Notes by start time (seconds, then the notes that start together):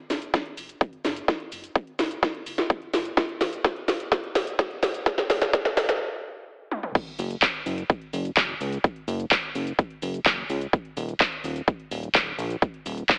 0.10 F#1, snare, open hi-hat, shaker
0.22 closed hi-hat, shaker
0.34 kick, snare, closed hi-hat, shaker
0.46 closed hi-hat
0.57 F#1, open hi-hat, shaker
0.69 closed hi-hat, shaker
0.81 F#1, kick, closed hi-hat, shaker
0.93 closed hi-hat
1.05 F#1, snare, open hi-hat, shaker
1.16 closed hi-hat, shaker
1.28 kick, snare, closed hi-hat, shaker
1.40 closed hi-hat
1.52 F#1, open hi-hat, shaker
1.64 closed hi-hat, shaker
1.75 kick, closed hi-hat, shaker
1.87 closed hi-hat
1.99 F#1, snare, open hi-hat, shaker
2.11 closed hi-hat, shaker
2.23 kick, snare, closed hi-hat, shaker
2.35 closed hi-hat
2.46 F#1, open hi-hat, shaker
2.58 snare, closed hi-hat, shaker
2.70 F#1, kick, closed hi-hat, shaker
2.82 closed hi-hat
2.93 F#1, snare, open hi-hat, shaker
3.05 closed hi-hat, shaker
3.17 kick, snare, closed hi-hat, shaker
3.29 closed hi-hat
3.41 D#1, snare, open hi-hat, shaker
3.53 closed hi-hat, shaker
3.64 kick, snare, closed hi-hat, shaker
3.76 closed hi-hat
3.88 D#1, snare, open hi-hat, shaker
4.00 closed hi-hat, shaker
4.12 kick, snare, closed hi-hat, shaker
4.24 closed hi-hat
4.35 D#1, snare, open hi-hat, shaker
4.47 closed hi-hat, shaker
4.59 D#1, kick, snare, closed hi-hat, shaker
4.71 closed hi-hat
4.83 D#1, snare, open hi-hat, shaker
4.94 closed hi-hat, shaker
5.06 kick, snare, closed hi-hat, shaker
5.18 snare, closed hi-hat
5.30 D#1, snare, open hi-hat, shaker
5.42 snare, closed hi-hat, shaker
5.53 kick, snare, closed hi-hat, shaker
5.65 snare, closed hi-hat
5.77 D#1, snare, open hi-hat, shaker
5.89 snare, closed hi-hat, shaker
6.71 high tom
6.83 mid tom
6.95 kick, closed hi-hat, crash, shaker
7.07 closed hi-hat
7.19 F#1, open hi-hat, shaker
7.31 closed hi-hat, shaker
7.42 kick, clap, closed hi-hat
7.54 closed hi-hat
7.66 F#1, open hi-hat, shaker
7.78 closed hi-hat, shaker
7.90 kick, closed hi-hat, shaker
8.02 closed hi-hat
8.13 F#1, open hi-hat, shaker
8.25 closed hi-hat, shaker
8.37 F#1, kick, clap, closed hi-hat, shaker
8.49 closed hi-hat
8.61 C#2, open hi-hat, shaker
8.72 closed hi-hat, shaker
8.84 kick, closed hi-hat, shaker
8.96 closed hi-hat
9.08 F#1, open hi-hat, shaker
9.20 closed hi-hat, shaker
9.31 kick, clap, closed hi-hat
9.43 closed hi-hat
9.55 F#1, open hi-hat, shaker
9.67 closed hi-hat, shaker
9.79 kick, closed hi-hat, shaker
9.90 closed hi-hat
10.02 F#1, open hi-hat, shaker
10.14 closed hi-hat, shaker
10.26 F#1, kick, clap, closed hi-hat
10.38 closed hi-hat
10.50 C#2, open hi-hat, shaker
10.61 closed hi-hat, shaker
10.73 kick, closed hi-hat, shaker
10.85 closed hi-hat
10.97 D#1, open hi-hat, shaker
11.09 closed hi-hat, shaker
11.20 kick, clap, closed hi-hat, shaker
11.32 closed hi-hat
11.44 D#1, open hi-hat, shaker
11.56 closed hi-hat, shaker
11.68 kick, closed hi-hat, shaker
11.80 closed hi-hat
11.91 D#1, open hi-hat, shaker
12.03 closed hi-hat, shaker
12.15 D#1, kick, clap, closed hi-hat
12.27 closed hi-hat
12.38 A#1, open hi-hat, shaker
12.50 closed hi-hat, shaker
12.62 kick, closed hi-hat, shaker
12.74 closed hi-hat
12.86 D#1, open hi-hat, shaker
12.98 closed hi-hat, shaker
13.09 kick, clap, closed hi-hat, shaker